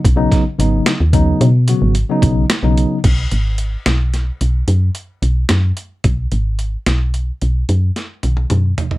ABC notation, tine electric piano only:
X:1
M:11/8
L:1/16
Q:1/4=110
K:B
V:1 name="Tine electric piano" clef=bass
z [C,F,B,D]2 z [C,F,B,D]3 z [C,F,B,D]3 z [C,F,B,F]2 z [C,F,B,D]3 z [C,F,B,D]3 | z16 z6 | z16 z6 |]